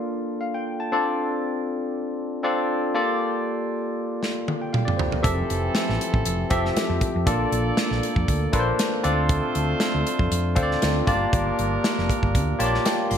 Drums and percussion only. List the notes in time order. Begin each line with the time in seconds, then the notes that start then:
4.23 snare
4.48 high tom
4.74 mid tom
4.88 mid tom
4.99 floor tom
5.12 floor tom
5.24 kick, closed hi-hat
5.50 closed hi-hat
5.75 snare, closed hi-hat
5.89 snare
6.01 closed hi-hat
6.14 kick
6.25 closed hi-hat
6.50 kick, closed hi-hat
6.65 snare
6.77 snare, closed hi-hat
7.01 kick, closed hi-hat
7.27 kick, closed hi-hat
7.52 closed hi-hat
7.77 snare, closed hi-hat
7.92 snare
8.03 closed hi-hat
8.16 kick
8.28 kick, closed hi-hat
8.53 kick, closed hi-hat
8.79 snare, closed hi-hat
9.04 closed hi-hat
9.29 kick, closed hi-hat
9.55 closed hi-hat
9.80 snare, closed hi-hat
10.07 closed hi-hat
10.19 kick
10.32 closed hi-hat
10.56 kick, closed hi-hat
10.71 snare
10.82 snare, closed hi-hat
11.07 kick, closed hi-hat
11.33 kick, closed hi-hat
11.59 closed hi-hat
11.84 snare, closed hi-hat
11.98 snare
12.10 kick, closed hi-hat
12.23 kick
12.35 kick, closed hi-hat
12.60 closed hi-hat
12.74 snare
12.86 snare, closed hi-hat
13.11 open hi-hat